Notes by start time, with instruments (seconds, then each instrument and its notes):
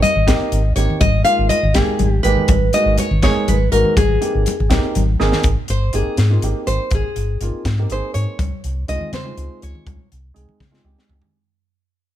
0.02 nylon-string guitar D#5, closed hi-hat, high conga, low conga
0.16 fingered electric bass G#1, low conga
0.27 grand piano A#3 C4 D#4 G4, kick, snare, closed hi-hat, muted conga
0.40 muted fingered electric bass stroke, low conga
0.52 fingered electric bass G#1, closed hi-hat, low conga
0.76 fingered electric bass G#1, grand piano A#3 C4 D#4 G4, nylon-string guitar C#5, closed hi-hat
0.90 low conga
1.01 fingered electric bass G#1, nylon-string guitar D#5, kick, closed hi-hat, muted conga, high conga, low conga
1.24 grand piano G#3 A#3 D#4 F4, nylon-string guitar F5, closed hi-hat
1.38 fingered electric bass G#1
1.49 nylon-string guitar D#5, closed hi-hat, high conga, low conga
1.63 fingered electric bass G#1, low conga
1.74 grand piano G#3 A#3 D#4 G4, nylon-string guitar G#4, kick, snare, closed hi-hat, muted conga
1.87 muted fingered electric bass stroke, low conga
1.99 fingered electric bass G#1, closed hi-hat, high conga, low conga
2.09 nylon-string guitar G4
2.23 fingered electric bass G#1, grand piano G#3 A#3 D#4 G4, nylon-string guitar B4, closed hi-hat
2.37 low conga
2.48 fingered electric bass G#1, kick, closed hi-hat, muted conga, high conga, low conga
2.73 grand piano G#3 A#3 D#4 F#4, nylon-string guitar D#5, closed hi-hat
2.86 fingered electric bass G#1
2.98 nylon-string guitar C#5, closed hi-hat, high conga, low conga
3.11 fingered electric bass G#1, low conga
3.22 grand piano G#3 A#3 D#4 G#4, nylon-string guitar C#5, kick, snare, closed hi-hat, muted conga
3.36 muted fingered electric bass stroke, low conga
3.47 fingered electric bass G#1, nylon-string guitar B4, closed hi-hat, high conga, low conga
3.72 fingered electric bass G#1, grand piano G#3 A#3 D#4 F#4, nylon-string guitar A#4, closed hi-hat
3.85 low conga
3.97 fingered electric bass G#1, nylon-string guitar G#4, kick, closed hi-hat, muted conga, high conga
4.21 grand piano A#3 C4 D#4 G4, closed hi-hat
4.35 fingered electric bass G#1, low conga
4.46 closed hi-hat, high conga, low conga
4.60 fingered electric bass G#1, low conga
4.69 grand piano A#3 C4 D#4 G4, kick, snare, closed hi-hat, muted conga, low conga
4.84 muted fingered electric bass stroke
4.95 fingered electric bass G#1, closed hi-hat, high conga
5.19 fingered electric bass G#1, grand piano A#3 C4 D#4 G#4, snare, low conga
5.32 snare, low conga
5.43 fingered electric bass G#1, kick, closed hi-hat
5.68 fingered electric bass G1, nylon-string guitar C5, closed hi-hat
5.93 fingered electric bass G1, grand piano A#3 C4 D#4 G4, nylon-string guitar G#4, closed hi-hat
6.06 muted fingered electric bass stroke
6.17 fingered electric bass G#2, snare, closed hi-hat
6.30 grand piano A#3 C4 D#4 F4
6.42 fingered electric bass G#1, grand piano A#3 C4 D#4 G4, closed hi-hat
6.67 fingered electric bass G#1, nylon-string guitar C5, closed hi-hat
6.91 fingered electric bass G#1, nylon-string guitar G#4, kick, closed hi-hat
7.16 fingered electric bass G1, closed hi-hat
7.41 fingered electric bass G1, grand piano A#3 C4 D#4 F4, closed hi-hat
7.54 muted fingered electric bass stroke
7.65 fingered electric bass G#2, kick, snare, closed hi-hat
7.79 grand piano A#3 C4 D#4 G4
7.90 fingered electric bass G#1, grand piano A#3 C4 D#4 G#4, nylon-string guitar C5, closed hi-hat
8.14 fingered electric bass G#2, nylon-string guitar C#5, closed hi-hat
8.39 fingered electric bass C#2, kick, closed hi-hat, muted conga, high conga
8.64 fingered electric bass C2, closed hi-hat
8.88 fingered electric bass C2, grand piano G#3 C4 D#4 F4, nylon-string guitar D#5, closed hi-hat
9.01 muted fingered electric bass stroke, low conga
9.12 fingered electric bass C#3, nylon-string guitar C5, snare, closed hi-hat, muted conga, high conga
9.24 grand piano G#3 C4 D#4 F4, low conga
9.37 fingered electric bass C#2, grand piano C3 G#3 D#4 F4, closed hi-hat
9.62 fingered electric bass C#2, nylon-string guitar C#5, closed hi-hat
9.75 low conga
9.87 fingered electric bass C#2, kick, closed hi-hat, muted conga, high conga, low conga
9.99 low conga
10.12 fingered electric bass C2, closed hi-hat
10.34 fingered electric bass C2, grand piano G#3 C4 D#4 G#4, closed hi-hat
10.49 muted fingered electric bass stroke, low conga
10.60 fingered electric bass C#3, kick, snare, muted conga, high conga
10.71 grand piano G#3 C4 D#4 F4, snare
10.84 fingered electric bass C#2, grand piano G#3 C4 D#4 G4, low conga
10.99 snare
11.09 fingered electric bass C#2, floor tom
11.22 floor tom, low conga